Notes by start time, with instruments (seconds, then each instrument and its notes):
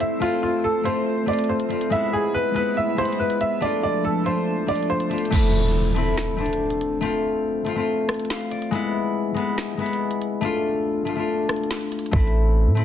Already playing: harp A3 C4 D4 E4, ambient pad A3 C4 E4 C5
0.00 upright piano E5, closed hi-hat
0.20 harp A3 C4 F4, upright piano F4, ambient pad F4, closed hi-hat
0.43 upright piano F4
0.64 upright piano A4
0.83 harp A3 C4 F4, upright piano C5, closed hi-hat
1.26 harp A3 C4 F4, upright piano D5, closed hi-hat
1.33 closed hi-hat
1.39 closed hi-hat
1.44 closed hi-hat
1.49 upright piano C5
1.60 closed hi-hat
1.69 harp A3 C4 F4, closed hi-hat
1.81 closed hi-hat
1.90 harp G#3 B3 E4, ambient pad G#3 B3 E4 B4, upright piano E5, closed hi-hat
2.13 upright piano G#4
2.34 upright piano B4
2.54 harp G#3 B3 E4, upright piano B4, closed hi-hat
2.77 upright piano E5
2.96 harp G#3 B3 E4, upright piano C5, closed hi-hat
3.05 closed hi-hat
3.12 closed hi-hat
3.20 upright piano B4
3.30 closed hi-hat
3.41 upright piano E5, closed hi-hat
3.60 ambient pad F3 A3 D4 A4, harp A3 D4 F4, upright piano D5, closed hi-hat
3.83 upright piano D5
4.05 upright piano A4
4.24 harp A3 D4 F4, upright piano C5, closed hi-hat
4.66 harp A3 D4 F4, upright piano D5, closed hi-hat
4.76 closed hi-hat
4.83 closed hi-hat
4.90 upright piano C5
5.00 closed hi-hat
5.09 harp A3 D4 F4, closed hi-hat
5.18 closed hi-hat
5.25 closed hi-hat
5.30 harp A3 C4 E4, closed hi-hat, crash, impact
5.39 closed hi-hat
5.47 closed hi-hat
5.94 harp A3 C4 E4, closed hi-hat
6.17 snare
6.37 harp A3 C4 D4, closed hi-hat
6.46 closed hi-hat
6.53 closed hi-hat
6.70 closed hi-hat
6.81 closed hi-hat
7.01 harp A3 C4 F4, closed hi-hat
7.64 harp A3 C4 F4, closed hi-hat
7.75 harp A3 C4 F4
8.09 cross-stick, closed hi-hat
8.14 closed hi-hat
8.20 closed hi-hat
8.25 closed hi-hat
8.30 harp F5, snare
8.41 closed hi-hat
8.51 harp D5, closed hi-hat
8.62 closed hi-hat
8.71 harp G#3 B3 E4, closed hi-hat
9.34 harp G#3 B3 E4, closed hi-hat
9.58 snare
9.77 harp G#3 B3 E4, closed hi-hat
9.86 closed hi-hat
9.93 closed hi-hat
10.11 closed hi-hat
10.22 closed hi-hat
10.41 harp A3 D4 F4, closed hi-hat
11.05 harp A3 D4 F4, closed hi-hat
11.15 harp A3 D4 F4
11.49 cross-stick, closed hi-hat
11.56 closed hi-hat
11.64 closed hi-hat
11.71 snare
11.81 closed hi-hat
11.92 closed hi-hat
11.99 closed hi-hat
12.06 closed hi-hat
12.11 808-style bass A1, harp A3 C4 E4, kick, closed hi-hat
12.20 closed hi-hat
12.27 closed hi-hat
12.66 808-style bass A2
12.75 harp A3 C4 E4, closed hi-hat